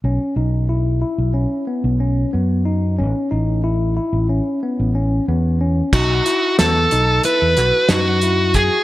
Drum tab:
CC |---------|---------|x--------|
HH |---------|---------|-xxxxxxxx|
SD |---------|---------|--o--oo--|
BD |---------|---------|o-------o|